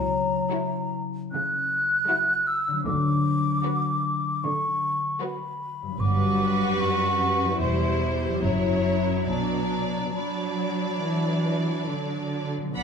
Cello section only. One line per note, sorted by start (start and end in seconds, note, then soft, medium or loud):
0.00 0.36 C#3 medium
1.34 1.94 C#3 medium
2.86 3.49 D3 medium
4.44 5.07 D3 medium
6.00 6.75 G2 soft
6.79 7.61 F#2 soft
7.61 8.42 E2 soft
8.43 9.28 F#2 soft
9.28 10.05 B2 soft
10.15 10.98 F#3 soft
11.02 11.89 E3 soft
11.88 12.74 D3 soft
12.74 12.83 B2 soft